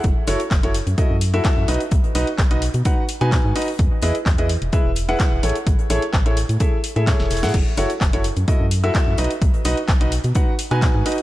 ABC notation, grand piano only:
X:1
M:4/4
L:1/16
Q:1/4=128
K:Bmix
V:1 name="Grand piano"
z2 [EFAc] z2 [EFAc] z2 [EFAd] z2 [EFAe]3 [DFBd] z | z2 [DFBd] z2 [DFBd] z2 [DFBf] z2 [DFBg]3 [DFBd] z | z2 [EGBd] z2 [EGBd] z2 [EGBe] z2 [EGBf]3 [EGAc] z | z2 [EGAc] z2 [EGAc] z2 [EGAe] z2 [EGAe] [EGAc]3 [EGAf] |
z2 [EFAc] z2 [EFAc] z2 [EFAd] z2 [EFAe]3 [DFBd] z | z2 [DFBd] z2 [DFBd] z2 [DFBf] z2 [DFBg]3 [DFBd] z |]